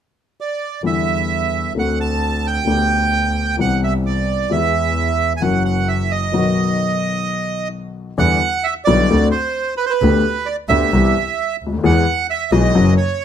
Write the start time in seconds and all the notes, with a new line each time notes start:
0.41 D5
0.83 E2 D3 E3 G3 B3 E4 E5
1.76 D2 D3 A3 C4 F#4 F#5
2.01 A5
2.47 G5
2.65 D2 D3 A3 B3 G4
3.57 C2 C3 E3 B3 C4 G4 F#5
3.84 E5
4.06 D5
4.51 E2 E3 G#3 B3 G#4 E5
5.37 E3 G#5
5.41 F#1 F#2 F#3 A#3 C#4 F#4 F#5
5.65 F#5
5.88 E5
6.11 D#5
6.32 B1 B2 D#3 F#3 B3 F#4
8.18 E2 D3 E3 G3 B3 E4 F#5
8.64 E5
8.85 B1 B2 D3 G3 B3 E4 D5
9.11 D2 D3 A3 C4 F#4
9.31 C5
9.77 B4
9.86 C5
9.90 B4
10.01 D2 D3 A3 B3 G4
10.46 D5
10.69 D2 D3 A3 B3 G4 E5
10.92 C2 C3 E3 B3 C4 G4
11.61 D2
11.67 C#2
11.72 D2
11.79 D#2
11.83 E2 E3 G#3 B3 G#4 F#5
12.30 E5
12.52 B1 B2 E3 G#3 B3 G#4 D#5
12.75 F#1 F#2 E3 F#3 A#3 C#4 F#4
12.97 C#5